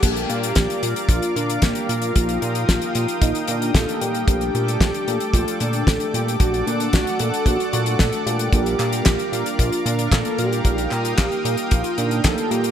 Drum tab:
CC |x---------------|----------------|----------------|----------------|
HH |xxxxxxxxxxxxxxxx|xxxxxxxxxxxxxxxx|xxxxxxxxxxxxxxxx|xxxxxxxxxxxxxxxx|
CP |----------------|----------------|----------------|----------------|
SD |----o-------o---|----o-------o---|----o-------o---|----o-------o---|
BD |o---o---o---o---|o---o---o---o---|o---o---o---o---|o---o---o---o---|

CC |----------------|----------------|
HH |xxxxxxxxxxxxxxxx|xxxxxxxxxxxxxxxx|
CP |--x-x-------x---|--x-x-------x---|
SD |----o-------o---|----o-------o---|
BD |o---o---o---o---|o---o---o---o---|